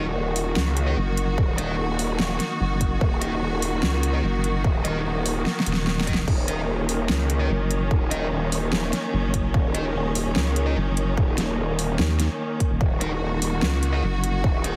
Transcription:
Already playing: D#1 D#3 A#3 F#4
0.15 D#1
0.36 open hi-hat
0.56 C#2, snare
0.77 closed hi-hat
0.87 D#4 A#4 D#5
0.97 F#1
1.17 closed hi-hat
1.38 D#1, kick
1.58 D#4 A#4 D#5, closed hi-hat
1.79 D#1
1.99 open hi-hat
2.19 D#1, snare
2.40 snare, closed hi-hat
2.60 F#1
2.81 kick, closed hi-hat
3.01 D#1, kick
3.21 D#4 A#4 D#5, closed hi-hat
3.42 D#1
3.62 open hi-hat
3.83 C#2, snare
4.03 closed hi-hat
4.13 D#4 A#4 D#5
4.24 F#1
4.44 closed hi-hat
4.64 D#1, kick
4.84 D#4 A#4 D#5, closed hi-hat
5.05 D#1
5.26 open hi-hat
5.46 snare
5.60 snare
5.66 D#1, closed hi-hat
5.73 snare
5.87 snare
6.00 snare
6.07 D1 D#4 A#4 D#5, kick, closed hi-hat
6.14 snare
6.28 D#1 C#4, kick, crash
6.48 D#4 A#4 D#5, closed hi-hat
6.68 D#1
6.89 open hi-hat
7.09 C#2, snare
7.30 closed hi-hat
7.40 D#4 A#4 D#5
7.50 F#1
7.71 closed hi-hat
7.91 D#1, kick
8.11 D#4 A#4 D#5, closed hi-hat
8.32 D#1
8.52 open hi-hat
8.73 D#1, snare
8.93 snare, closed hi-hat
9.13 F#1
9.34 kick, closed hi-hat
9.54 D#1, kick
9.74 D#4 A#4 D#5, closed hi-hat
9.95 D#1
10.15 open hi-hat
10.36 C#2, snare
10.56 closed hi-hat
10.66 D#4 A#4 D#5
10.77 F#1
10.97 closed hi-hat
11.17 D#1, kick
11.38 snare, closed hi-hat
11.58 D#1
11.79 open hi-hat
11.99 D#2, snare
12.20 snare, closed hi-hat
12.60 kick, closed hi-hat
12.71 D#1
12.81 D#1 F#4, kick
13.01 D#4 A#4 D#5, closed hi-hat
13.22 D#1
13.42 open hi-hat
13.62 C#2, snare
13.83 closed hi-hat
13.93 D#4 A#4 D#5
14.03 F#1
14.24 closed hi-hat
14.44 D#1, kick
14.64 D#4 A#4 D#5, closed hi-hat

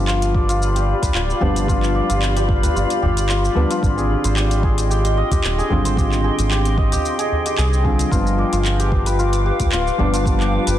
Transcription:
Already playing: G1 F3 G3 B3 D4 G4 C5 D5 F5 B5
0.08 F4, clap, shaker
0.22 closed hi-hat, shaker
0.34 D5, kick
0.49 F4, closed hi-hat, shaker
0.62 shaker
0.75 G4, closed hi-hat, shaker
1.02 B4, kick, closed hi-hat, udu, shaker
1.14 D1 F4, clap, shaker
1.30 shaker
1.40 G1 F3 G3 B3 D4 G4, udu
1.56 closed hi-hat, shaker
1.66 F3 G3 B3 F4, kick, shaker
1.70 D4
1.83 clap, shaker
1.95 D5
2.09 G1 F4, closed hi-hat, shaker
2.22 clap, shaker
2.36 G4, closed hi-hat, shaker
2.49 kick
2.63 B4, closed hi-hat, udu, shaker
2.75 G1 F4, shaker
2.90 closed hi-hat, shaker
3.02 G1 G4, udu
3.17 closed hi-hat, shaker
3.29 F4, clap, shaker
3.45 shaker
3.55 D2 F3 G3 B3 D4 D5
3.71 F4, closed hi-hat, shaker
3.81 G#1 D3 C4 F4 D#5 G5 C6, kick, shaker
3.98 G#4, shaker
4.24 G#1 C5, closed hi-hat, shaker
4.37 G4, clap, shaker
4.51 closed hi-hat, shaker
4.63 G#4, kick
4.78 closed hi-hat, shaker
4.90 G4, shaker
5.05 closed hi-hat, shaker
5.17 D#5
5.31 G4, kick, closed hi-hat, udu, shaker
5.44 D#1, clap, shaker
5.58 G#4, shaker
5.70 G#1 D3 G3 C4 F4, udu
5.85 C5, closed hi-hat, shaker
5.95 D3 C4 F4 G4, kick, shaker
6.12 clap, shaker
6.24 G#4
6.39 G#1, closed hi-hat, shaker
6.51 G4, clap, shaker
6.65 closed hi-hat, shaker
6.78 D#5, kick
6.92 G4, closed hi-hat, udu, shaker
7.05 shaker
7.19 G#4, closed hi-hat, shaker
7.32 udu
7.46 G4, closed hi-hat, shaker
7.58 C2 G#4, clap, shaker
7.73 shaker
7.84 D3 G3 C4 F4 G#4, kick
7.99 closed hi-hat, shaker
8.09 G1 F3 G3 B3 D4 F4 B4 F5 D6, kick, shaker
8.27 shaker
8.38 D5
8.53 G1 F4, closed hi-hat, shaker
8.65 clap, shaker
8.80 G4, closed hi-hat, shaker
8.92 kick
9.06 B4, closed hi-hat, shaker
9.19 F4, shaker
9.33 closed hi-hat, shaker
9.46 G4
9.60 kick, closed hi-hat, udu, shaker
9.72 D1 F4, clap, shaker
9.88 shaker
9.98 G1 F3 G3 B3 D4 D5, udu
10.14 F4, closed hi-hat, shaker
10.23 F3 G3 B3, kick, shaker
10.27 D4
10.40 G4, clap, shaker
10.67 G1 B4, closed hi-hat, shaker

